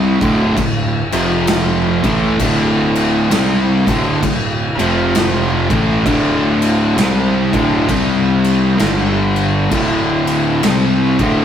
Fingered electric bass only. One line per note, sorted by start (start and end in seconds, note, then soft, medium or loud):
0.00 0.16 C2 loud
0.22 0.54 D1 loud
0.57 1.09 D1 medium
1.12 1.99 F1 loud
2.04 2.37 A1 loud
2.40 3.27 D1 loud
3.31 3.83 C2 loud
3.87 4.20 D1 medium
4.23 4.75 D1 medium
4.79 5.66 F1 loud
5.70 6.03 A1 loud
6.06 6.93 D1 loud
6.97 7.49 C2 loud
7.53 7.86 D1 loud
7.89 8.76 C2 loud
8.80 9.67 G1 medium
9.71 10.59 D1 loud
10.63 11.15 C2 loud
11.19 11.45 D1 loud